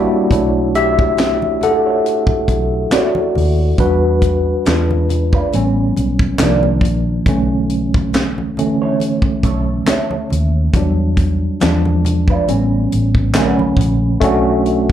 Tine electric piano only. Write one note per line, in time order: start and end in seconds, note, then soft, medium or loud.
0.00 0.33 G3 medium
0.00 0.32 A#3 medium
0.00 0.32 D4 medium
0.00 0.32 E4 medium
0.00 0.71 F#4 medium
0.00 0.32 G4 medium
0.00 0.32 C#5 medium
0.00 0.77 D5 medium
0.31 3.75 A3 soft
0.31 3.75 D4 soft
0.31 3.75 E4 medium
0.31 3.75 C#5 soft
0.75 1.58 G4 medium
0.75 1.64 E5 loud
1.63 2.89 A4 medium
1.63 2.88 F#5 medium
2.93 3.75 F#4 medium
2.93 3.81 D5 medium
3.79 4.61 G3 medium
3.79 4.65 D4 medium
3.79 4.62 F#4 medium
3.79 5.49 B4 medium
4.66 5.48 G#3 medium
4.66 5.49 D4 medium
4.66 5.49 F4 medium
5.54 6.12 G3 medium
5.54 6.13 B3 soft
5.54 6.13 C#4 medium
6.40 7.23 D#3 medium
6.40 7.23 F3 medium
6.40 7.23 A#3 medium
6.40 7.23 D4 medium
7.28 7.86 D3 soft
7.28 7.86 E3 soft
7.28 7.87 A3 medium
7.28 7.87 C#4 medium
8.58 8.97 D3 medium
8.58 8.97 E3 soft
8.58 8.97 A3 soft
8.58 8.97 C#4 medium
10.76 11.34 F#3 medium
10.76 11.35 G3 soft
10.76 11.35 D4 medium
11.61 12.44 F3 medium
11.61 12.44 G#3 medium
11.61 12.45 D4 medium
12.48 13.31 G3 medium
12.48 13.31 B3 medium
12.48 13.31 C#4 medium
13.36 14.18 D3 medium
13.36 14.18 A3 soft
13.36 14.19 C#4 medium
14.20 14.92 A3 medium
14.20 14.92 C#4 medium
14.20 14.92 D4 medium
14.20 14.92 F#4 loud